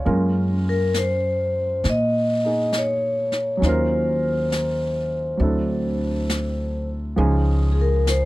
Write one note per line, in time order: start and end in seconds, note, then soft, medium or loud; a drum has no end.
0.00 0.13 C#5 soft
0.05 1.80 F#2 medium
0.05 3.62 G#3 soft
0.05 3.62 A#3 soft
0.05 3.58 C#4 soft
0.05 3.63 F4 soft
0.05 3.63 A#4 soft
0.05 brush sweep soft
0.69 0.96 A#4 medium
0.94 1.88 C5 medium
0.94 snare soft
0.94 hi-hat pedal soft
1.84 3.59 A#2 medium
1.84 brush sweep soft
1.84 snare soft
1.90 2.78 D#5 medium
2.45 3.62 D#4 soft
2.45 3.63 G#4 soft
2.73 snare soft
2.73 hi-hat pedal medium
2.78 3.67 C#5 medium
3.32 snare soft
3.57 5.36 F#3 medium
3.57 5.39 C#4 soft
3.62 5.36 D#2 medium
3.62 5.41 D#4 soft
3.62 5.42 F4 soft
3.62 6.87 C5 medium
3.62 brush sweep soft
3.62 snare soft
3.69 5.43 A#4 medium
4.52 snare soft
4.52 hi-hat pedal soft
5.37 7.13 D2 medium
5.37 7.16 F#3 soft
5.37 7.17 C4 soft
5.37 7.17 D4 soft
5.37 brush sweep soft
5.42 7.18 E4 soft
5.42 7.19 A4 soft
6.29 snare soft
6.29 hi-hat pedal medium
7.16 8.25 C#2 medium
7.16 8.25 F3 medium
7.16 8.25 G#3 soft
7.16 8.25 C#4 soft
7.16 8.25 D#4 medium
7.16 8.25 G#4 medium
7.16 brush sweep soft
7.72 7.79 G#4 soft
7.81 8.09 A#4 medium
8.07 8.25 C5 medium
8.07 snare soft
8.07 hi-hat pedal soft